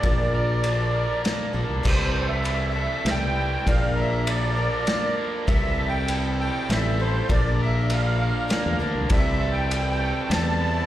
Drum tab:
CC |------|x-----|------|------|
RD |x-x-x-|--x-x-|x-x-x-|x-x-x-|
SD |----o-|----o-|----o-|----o-|
BD |o-----|o-----|o-----|o-----|

CC |------|------|
RD |x-x-x-|x-x-x-|
SD |----o-|----o-|
BD |o-----|o-----|